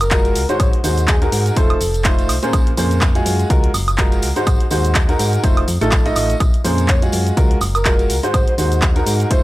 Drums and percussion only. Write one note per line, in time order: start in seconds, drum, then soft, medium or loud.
0.01 closed hi-hat soft
0.01 high woodblock medium
0.01 shaker soft
0.11 kick loud
0.11 clap loud
0.11 closed hi-hat loud
0.11 tambourine medium
0.11 shaker soft
0.25 closed hi-hat soft
0.25 tambourine soft
0.36 open hi-hat medium
0.36 tambourine loud
0.36 shaker medium
0.49 closed hi-hat soft
0.49 tambourine soft
0.49 shaker soft
0.60 kick loud
0.60 closed hi-hat medium
0.60 tambourine medium
0.60 high woodblock medium
0.60 shaker soft
0.73 closed hi-hat soft
0.84 open hi-hat loud
0.84 tambourine loud
0.84 shaker medium
0.98 closed hi-hat soft
0.98 tambourine soft
0.98 shaker soft
1.08 kick loud
1.08 clap loud
1.08 closed hi-hat medium
1.08 tambourine medium
1.08 shaker soft
1.22 closed hi-hat soft
1.22 tambourine soft
1.32 open hi-hat loud
1.32 tambourine loud
1.32 shaker medium
1.46 closed hi-hat soft
1.46 tambourine soft
1.46 shaker soft
1.56 kick loud
1.56 closed hi-hat medium
1.56 tambourine medium
1.56 shaker soft
1.70 closed hi-hat soft
1.70 high woodblock medium
1.81 open hi-hat loud
1.81 tambourine loud
1.81 shaker medium
1.94 closed hi-hat soft
1.94 tambourine soft
1.94 shaker soft
2.04 kick loud
2.04 clap loud
2.04 closed hi-hat loud
2.04 tambourine medium
2.04 shaker soft
2.19 closed hi-hat soft
2.19 tambourine soft
2.29 open hi-hat loud
2.29 tambourine loud
2.29 high woodblock medium
2.29 shaker medium
2.42 closed hi-hat soft
2.42 tambourine soft
2.42 shaker soft
2.53 kick loud
2.53 closed hi-hat medium
2.53 tambourine medium
2.53 high woodblock medium
2.53 shaker soft
2.67 closed hi-hat soft
2.77 open hi-hat loud
2.77 tambourine loud
2.77 shaker medium
2.91 closed hi-hat soft
2.91 tambourine soft
2.91 shaker soft
3.01 kick loud
3.01 clap loud
3.01 closed hi-hat medium
3.01 tambourine medium
3.01 shaker soft
3.15 closed hi-hat soft
3.15 tambourine soft
3.26 open hi-hat loud
3.26 tambourine medium
3.26 shaker medium
3.39 closed hi-hat soft
3.39 tambourine soft
3.39 shaker soft
3.50 kick loud
3.50 closed hi-hat medium
3.50 tambourine medium
3.50 shaker soft
3.64 closed hi-hat soft
3.74 open hi-hat loud
3.74 tambourine loud
3.74 high woodblock medium
3.74 shaker medium
3.88 closed hi-hat soft
3.88 tambourine soft
3.88 high woodblock medium
3.88 shaker soft
3.98 kick loud
3.98 clap loud
3.98 closed hi-hat loud
3.98 tambourine medium
3.98 shaker soft
4.12 closed hi-hat soft
4.12 tambourine soft
4.22 open hi-hat loud
4.22 tambourine medium
4.22 shaker medium
4.36 closed hi-hat soft
4.36 tambourine soft
4.36 shaker soft
4.46 kick loud
4.46 closed hi-hat medium
4.46 tambourine medium
4.46 high woodblock medium
4.46 shaker soft
4.60 closed hi-hat soft
4.71 open hi-hat loud
4.71 tambourine loud
4.71 shaker medium
4.84 closed hi-hat soft
4.84 tambourine soft
4.84 shaker soft
4.95 kick loud
4.95 clap loud
4.95 closed hi-hat medium
4.95 tambourine medium
5.09 closed hi-hat soft
5.09 tambourine soft
5.19 open hi-hat medium
5.19 tambourine loud
5.19 shaker medium
5.33 closed hi-hat soft
5.33 tambourine soft
5.33 shaker soft
5.44 kick loud
5.44 closed hi-hat medium
5.44 tambourine medium
5.44 shaker soft
5.57 closed hi-hat soft
5.57 high woodblock medium
5.68 open hi-hat loud
5.68 tambourine loud
5.68 shaker medium
5.81 closed hi-hat soft
5.81 tambourine soft
5.81 shaker soft
5.92 kick loud
5.92 clap loud
5.92 closed hi-hat medium
5.92 tambourine medium
5.92 shaker soft
6.06 closed hi-hat soft
6.06 tambourine soft
6.16 open hi-hat loud
6.16 tambourine loud
6.16 high woodblock medium
6.16 shaker medium
6.29 closed hi-hat soft
6.29 tambourine soft
6.29 shaker soft
6.40 kick loud
6.40 closed hi-hat medium
6.40 tambourine soft
6.40 high woodblock medium
6.40 shaker soft
6.54 closed hi-hat soft
6.65 open hi-hat loud
6.65 tambourine medium
6.65 shaker medium
6.78 closed hi-hat soft
6.78 tambourine soft
6.78 shaker soft
6.88 kick loud
6.88 clap loud
6.88 closed hi-hat medium
6.88 tambourine medium
6.88 shaker soft
7.02 closed hi-hat soft
7.02 tambourine soft
7.12 open hi-hat medium
7.12 tambourine medium
7.12 shaker medium
7.26 closed hi-hat soft
7.26 tambourine soft
7.26 shaker soft
7.37 kick loud
7.37 closed hi-hat medium
7.37 tambourine medium
7.37 shaker soft
7.51 closed hi-hat soft
7.61 open hi-hat loud
7.61 tambourine medium
7.61 high woodblock medium
7.61 shaker medium
7.75 closed hi-hat soft
7.75 tambourine soft
7.75 high woodblock medium
7.75 shaker soft
7.85 kick loud
7.85 clap loud
7.85 closed hi-hat medium
7.85 tambourine medium
7.85 shaker soft
7.99 closed hi-hat soft
7.99 tambourine soft
8.10 open hi-hat medium
8.10 tambourine medium
8.10 shaker medium
8.23 closed hi-hat soft
8.23 tambourine soft
8.23 shaker soft
8.34 kick loud
8.34 closed hi-hat medium
8.34 tambourine soft
8.34 high woodblock medium
8.34 shaker soft
8.48 closed hi-hat soft
8.58 open hi-hat loud
8.58 tambourine medium
8.58 shaker medium
8.71 closed hi-hat soft
8.71 tambourine soft
8.71 shaker soft
8.82 kick loud
8.82 clap loud
8.82 closed hi-hat medium
8.82 tambourine soft
8.82 shaker soft
8.96 closed hi-hat soft
8.96 tambourine soft
9.06 open hi-hat medium
9.06 tambourine medium
9.06 shaker medium
9.20 closed hi-hat soft
9.20 tambourine soft
9.20 shaker soft
9.31 kick loud
9.31 closed hi-hat loud
9.31 tambourine medium
9.31 shaker soft